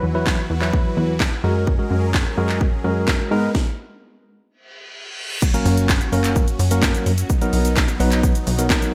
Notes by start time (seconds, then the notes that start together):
Already playing: E3 E4 F#4 B4
0.03 E2
0.15 F#3 E4 B4
0.27 kick, snare, clap
0.50 E2
0.61 F#3 E4 B4, clap
0.73 kick
0.97 E2
1.20 kick, snare, clap
1.44 F#2 F#3 G#3 C#4 F#4 G#4 A#4
1.67 kick
1.79 G#3 F#4 A#4
1.91 F#2
2.14 kick, snare, clap
2.37 F#2 G#3 F#4 A#4
2.49 clap
2.61 kick
2.84 F#2 G#3 F#4 A#4
3.08 kick, snare, clap
3.31 G#2 G#3 B3 D#4 A#4 B4
3.55 kick, snare
4.48 reverse cymbal
5.42 F#3 C#4 F#4, kick, crash, impact, shaker
5.54 F#3 A#3 C#4 A#4, closed hi-hat, shaker
5.66 F#2, open hi-hat, shaker
5.77 closed hi-hat, shaker
5.89 kick, snare, clap, shaker
6.01 closed hi-hat, shaker
6.12 F#2 F#3 A#3 C#4 A#4, open hi-hat, shaker
6.24 clap, closed hi-hat, shaker
6.36 kick, shaker
6.48 closed hi-hat, shaker
6.59 F#2, open hi-hat, shaker
6.71 F#3 A#3 C#4 A#4, closed hi-hat, shaker
6.83 kick, snare, clap, shaker
6.95 closed hi-hat, shaker
7.06 F#2, open hi-hat, shaker
7.18 closed hi-hat, shaker
7.30 B3 D#4, kick, shaker
7.41 F#3 B3 D#4 A#4, closed hi-hat, shaker
7.53 B1, open hi-hat, shaker
7.65 closed hi-hat, shaker
7.77 kick, snare, clap, shaker
7.88 closed hi-hat, shaker
8.00 B1 F#3 B3 D#4 B4, open hi-hat, shaker
8.12 clap, closed hi-hat, shaker
8.23 kick, shaker
8.35 closed hi-hat, shaker
8.47 B1, open hi-hat, shaker
8.58 F#3 B3 D#4 A#4, closed hi-hat, shaker
8.70 kick, snare, clap, shaker
8.82 closed hi-hat, shaker